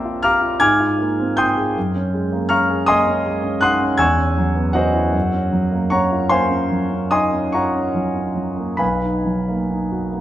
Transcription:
Already playing: A#1 A#3 C4 F4 G4 D5 E5 G5 A5 A#5 C6 D6 E6
0.05 F4
0.23 G4 F5 A#5 D6 F6
0.42 F4
0.60 G#2 G#5 D6 F6 G#6
0.80 F4
0.99 A#3
1.20 C4
1.37 F4 G5 C6 D#6 G6
1.57 G#4
1.77 F#2
1.95 C#4
2.14 G#3
2.32 A#3
2.49 C#4 F5 A#5 C#6 F6
2.69 G#4
2.86 A#3 D#5 G#5 C6 D#6
3.07 C#4
3.26 G#3
3.43 C#4
3.61 D#4 F#5 C6 D#6 F#6
3.81 C#4
3.97 E2 G#5 C#6 E6 G#6
4.18 C#4
4.38 F#3
4.55 B3
4.73 C#4 F#4 C5 D#5 F#5
4.93 E4
5.13 F#2
5.33 C#4
5.52 F#3
5.71 A#3
5.90 C#4 C#5 F#5 A#5 C#6
6.12 F4
6.29 A#3 C5 F5 G#5 C6
6.50 C#4
6.71 F#3
6.90 C#4
7.11 D#4 D#5 G#5 C6 D#6
7.32 C#4
7.52 F4 C#5 F#5 A#5 C#6
7.75 C#4
7.94 F#3
8.15 C#4
8.35 F#3
8.57 A#3
8.77 B1 B4 F5 G#5 B5
9.01 D#4
9.25 F#3
9.48 A#3
9.70 D#4
9.92 F#4
10.13 A#3

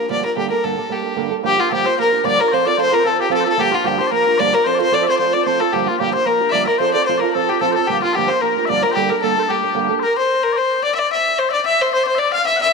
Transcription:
0.09 G2 D3 F3 A#3 D4 G4 D5
0.24 F3 A#3 D4 G4 A#4
0.35 G2 D3 G3 A#3 D4 G4 A4
0.50 G3 A#3 D4 A4 A#4
0.64 G2 D3 G3 A#3 D4 A4
0.77 G3 A#3 D4 A4
0.89 G3 A#3 D4 G4 A4
1.03 G3 A#3 D4 A4
1.16 G2 D3 G3 A#3 D4 A4
1.30 G3 A#3 D4 A4
1.43 G2 D3 F3 A#3 D4 G4
1.58 F3 A#3 D4 F4 G4
1.69 G2 D3 F3 A#3 D4 G4 A4
1.86 F3 A#3 D4 G4 C5
1.97 F3 A#3 D4 G4 A#4
2.12 F3 A#3 D4 G4
2.23 G2 D3 F3 A#3 D4 G4 D5
2.39 F3 A#3 G4 A#4
2.49 F3 C5 D5
2.53 C4 F4 A4 C5
2.65 C4 F4 A4 D5
2.77 F3 C4 F4 A4 C5
2.91 C4 F4 A4 A#4
3.00 F3 C5
3.04 C4 F4 A4
3.17 C4 F4 G4 A4
3.21 G4
3.29 F3 C4 F4 A4
3.34 A4
3.40 A4 C5
3.46 C4 F4 A4
3.57 G2 D3 F3 A#3 D4 G4
3.71 F3 D4 F4 G4
3.84 G2 D3 F3 A#3 D4 G4
3.98 F3 A#3 D4 G4 C5
4.07 F3 A#3 A#4 D5
4.12 D4 G4 A#4
4.26 F3 A#3 D4 G4
4.38 G2 D3 F3 A#3 D4 G4 D5
4.53 F3 A#3 D4 G4 A#4
4.64 F3 C4 F4 A4 C5
4.75 A4 D5
4.79 C4 F4 C5
4.91 F3 C4 F4 A4 D5
5.03 A4 C5 E5
5.07 C4 F4 C5
5.16 F3 C4 C5 D5
5.20 F4 A4
5.33 C4 F4 A4 D5
5.45 F3 C4 F4 A4 C5
5.60 C4 F4 A4
5.72 G2 D3 F3 A#3 D4 G4
5.87 F3 A#3 D4 F4 G4
5.99 G2 D3 F3 A#3 D4 G4
6.13 F3 A#3 D4 G4 C5
6.25 F3 A#3 D4 G4 A#4
6.40 F3 D4 G4
6.49 G2 D3 F3 A#3 D4 D5 E5
6.54 G4
6.64 G4 A#4 E5
6.68 F3 A#3
6.78 F3 C4 F4 A4 C5
6.94 C4 F4 A4 D5
7.03 C5 D5
7.07 F3 C4 F4 A4 C5
7.18 A4 A#4 D5
7.23 C4 F4
7.34 F3 C4 F4 A4
7.49 C4 F4 G4 A4
7.61 F3 C4 F4 A4
7.71 A4 C5
7.77 C4 F4 A4
7.87 G2 D3 F3 A#3 D4 G4
8.02 F3 A#3 D4 F4 G4
8.13 G2 D3 F3 A#3 D4 G4 A4
8.28 F3 A#3 D4 G4 C5
8.40 F3 A#3 D4 G4 A#4
8.57 F3 A#3 D4 G4
8.65 G2 D5 E5
8.69 D3 F3 A#3 D4 G4 D5
8.83 F3 A#3 D4 G4 A#4
8.91 G4 C5
8.96 G2 D3 G3 A#3 D4 G4 A4
9.10 G3 A#3 D4 A4 A#4
9.22 G2 D3 G3 A#3 D4 A4
9.37 G3 A#3 D4 A4 C5
9.43 A4
9.48 G3 A#3 D4 G4 A4
9.63 G3 A#3 D4 A4
9.74 G2 D3 G3 A#3 D4 A4
9.89 G3 A#3 D4 A4
10.00 A#4 C5
10.04 A#4
10.17 C5
10.43 A#4
10.53 C5 D5
10.58 C5
10.83 D5
10.95 D5 E5
10.99 D5
11.11 E5
11.39 C5
11.49 D5 E5
11.66 E5
11.82 C5
11.93 C5
12.04 C5 D5
12.15 D5 E5
12.19 D5
12.32 F5
12.46 E5
12.56 E5 F#5
12.62 E5

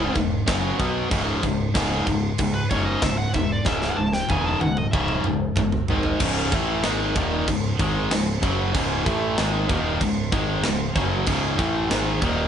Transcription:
Already playing: C#2 G#2 C#3 E4
0.15 E1 C#2 G#2, kick, crash
0.47 F#1 F#2 C#3 F#3, kick, snare, crash
0.78 B1 B2 F#3 B3, kick, crash
1.10 C#1 C#2 G#2 C#3, kick, crash
1.43 C#1 C#2 G#2, kick, crash
1.74 C#1 C#2 G#2 C#3, kick, snare, crash
2.07 C#1 C#2 G#2, kick, crash
2.38 C#2 G#2, kick, crash
2.54 B4
2.69 F#1 C#2 G#2 C#3 C#5, kick, crash
2.85 D#5
3.02 C#1 C#2 G#2 E5, kick, snare, crash
3.18 F#5
3.34 E1 C#2 G#2 E5, kick, crash
3.52 D5
3.65 C#1 C#2 G#2 C#3 E5, kick, snare
3.82 F#5, snare
3.97 C#1 C#2 G#2 A5
4.13 G5, snare
4.29 E1 C#2 G#2 C#3 G#5, kick, high tom
4.46 A5
4.61 C#1 C#2 G#2 F#5, high tom
4.77 D#5, mid tom
4.92 C#1 C#2 G#2 C#3 E5, kick
5.08 mid tom
5.24 C#1 C#2 G#2, mid tom
5.56 G1 C#2 G#2, kick, mid tom
5.72 floor tom
5.88 G#1 G#2 D#3 G#3, floor tom
6.03 floor tom
6.20 C#1 C#2 G#2 C#3, kick, crash
6.52 A1 A2 E3 A3, kick, crash
6.83 G#1 G#2 D#3 G#3, snare, crash
7.15 D#1 D#2 A#2 D#3, kick, crash
7.48 C#1 C#2 G#2, kick, crash
7.79 G#1 G#2 D#3 G#3, kick, crash
8.11 C#1 C#2 G#2, snare, crash
8.42 F#1 F#2 C#3 F#3, kick, crash
8.73 C#1 C#2 G#2 C#3, kick, crash
9.06 A1 A2 E3 A3, kick, crash
9.37 G#1 G#2 D#3 G#3, snare, crash
9.68 D#1 D#2 A#2 D#3, kick, crash
10.01 C#1 C#2 G#2, kick, crash
10.32 G#1 G#2 D#3 G#3, kick, crash
10.63 C#1 C#2 G#2, snare, crash
10.95 F#1 F#2 C#3 F#3, kick, crash
11.26 C#1 C#2 G#2 C#3, kick, crash
11.58 A1 A2 E3 A3, kick, crash
11.90 G#1 G#2 D#3 G#3, snare, crash
12.22 D#1 D#2 A#2 D#3, kick, crash

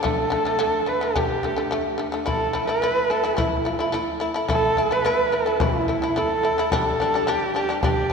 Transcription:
0.03 D3 A3 A4, frame drum
0.30 D3 A3
0.45 D3 A3, frame drum
0.59 D3 A3, frame drum
0.86 D3 A3 B4, frame drum
1.01 D3 A3
1.16 D3 A3 G4, frame drum
1.43 D3 A3
1.56 D3 A3, frame drum
1.71 D3 A3, frame drum
1.98 D3 A3
2.12 D3 A3
2.26 A3 E4 A4, frame drum
2.53 A3 E4
2.67 A3 E4 B4, frame drum
2.82 A3 E4, frame drum
3.10 A3 E4 A4, frame drum
3.24 A3 E4
3.37 A3 E4, frame drum
3.65 A3 E4
3.79 A3 E4, frame drum
3.92 A3 E4, frame drum
4.20 A3 E4
4.34 A3 E4
4.48 A3 E4 A4, frame drum
4.77 A3 E4
4.91 A3 E4 B4, frame drum
5.05 A3 E4, frame drum
5.32 A3 E4 A4, frame drum
5.46 A3 E4
5.60 A3 E4, frame drum
5.88 A3 E4
6.02 A3 E4, frame drum
6.16 A3 E4 A4, frame drum
6.43 A3 E4
6.58 A3 E4
6.72 G3 D4 A4, frame drum
7.00 G3 D4
7.14 G3 D4, frame drum
7.27 G3 D4 G4, frame drum
7.55 G3 D4 G4
7.69 G3 D4
7.83 G3 D4 G4, frame drum
8.10 G3

